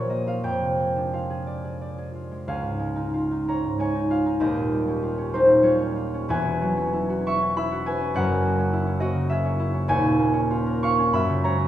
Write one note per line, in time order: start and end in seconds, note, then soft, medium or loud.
0.00 0.46 A#2 medium
0.00 3.83 F3 soft
0.00 0.25 F4 soft
0.00 0.46 G4 soft
0.00 0.46 A#4 soft
0.00 0.46 C#5 medium
0.00 0.42 G5 medium
0.09 0.46 A#3 soft
0.09 0.38 D#5 medium
0.27 1.12 F4 soft
0.27 0.56 F5 medium
0.44 2.51 F2 medium
0.44 1.61 G5 medium
0.61 2.51 C3 soft
0.79 2.30 G#3 soft
0.96 2.51 D4 soft
1.13 2.14 F4 soft
1.13 2.46 F5 soft
1.30 1.63 G#4 soft
1.47 1.80 D5 soft
1.64 1.97 G#4 soft
1.82 2.51 D5 soft
1.98 2.48 G#4 soft
2.15 3.13 F4 soft
2.32 2.78 G#3 soft
2.48 4.44 C#2 medium
2.48 4.10 G#4 medium
2.48 4.09 F5 medium
2.63 3.63 G#2 soft
2.79 3.47 G#3 soft
2.96 3.30 D#4 soft
3.14 4.09 F4 soft
3.31 3.93 D#4 soft
3.48 3.78 G#3 soft
3.48 3.79 C#5 medium
3.48 6.32 A#5 medium
3.64 4.44 G#2 soft
3.79 4.44 G#3 soft
3.79 5.62 C#5 medium
3.79 4.44 G#5 medium
3.95 4.25 D#4 soft
4.10 5.01 F4 soft
4.10 4.45 G#4 medium
4.10 6.32 F5 medium
4.26 5.34 D#4 soft
4.40 6.31 D#1 medium
4.40 6.32 D#2 medium
4.40 6.33 G4 medium
4.40 6.32 D#5 medium
4.57 5.47 A#2 soft
4.72 5.33 G3 soft
4.88 5.17 C#4 medium
5.03 5.63 F4 medium
5.18 5.78 C#4 soft
5.34 5.61 G3 soft
5.34 6.34 D#4 medium
5.34 5.87 C5 medium
5.48 6.32 A#2 soft
5.62 6.32 G3 medium
5.62 5.95 F4 medium
5.62 9.53 C#5 medium
5.79 6.12 C#4 soft
5.96 6.32 F4 medium
6.14 6.76 C#4 medium
6.29 8.16 E1 medium
6.29 8.16 E2 medium
6.29 7.86 B4 medium
6.29 7.85 G#5 loud
6.45 8.16 B2 soft
6.62 9.91 F#3 medium
6.77 7.41 C#4 medium
6.93 7.25 E4 medium
7.09 7.70 F#4 medium
7.26 7.56 E4 medium
7.26 7.57 E5 medium
7.26 10.81 C#6 medium
7.42 7.99 C#4 medium
7.56 7.85 E4 medium
7.56 9.28 E5 medium
7.56 8.16 B5 loud
7.71 9.00 F#4 medium
7.86 8.72 E4 medium
7.86 8.18 B4 medium
7.86 9.88 G#5 medium
8.01 8.58 C#4 medium
8.14 9.90 F#1 medium
8.14 9.91 F#2 medium
8.14 10.65 A#4 medium
8.14 9.91 F#5 loud
8.30 9.14 C#3 medium
8.45 8.99 A#3 medium
8.59 8.86 C#4 medium
8.73 9.58 E4 medium
8.87 9.44 C#4 medium
9.00 9.29 A#3 medium
9.00 9.91 F#4 medium
9.00 9.50 D#5 medium
9.15 9.90 C#3 medium
9.30 10.17 A#3 medium
9.30 11.68 G#4 medium
9.30 9.90 E5 medium
9.45 9.73 C#4 medium
9.59 9.91 E4 medium
9.74 10.32 C#4 medium
9.88 11.16 D#1 medium
9.88 11.17 D#2 medium
9.88 11.43 C#5 medium
9.88 11.68 G#5 loud
10.04 11.17 A#2 medium
10.18 11.17 A#3 medium
10.34 10.97 C#4 medium
10.51 10.82 F4 medium
10.66 11.16 A#4 medium
10.83 11.17 F4 medium
10.83 11.17 F5 medium
10.83 11.68 C#6 loud
10.98 11.57 C#4 medium
11.13 11.68 F#2 medium
11.13 11.68 E5 medium
11.13 11.68 B5 loud
11.29 11.68 C#3 medium
11.43 11.68 G#3 medium
11.43 11.68 C#5 medium
11.43 11.68 A#5 loud
11.59 11.68 C#4 medium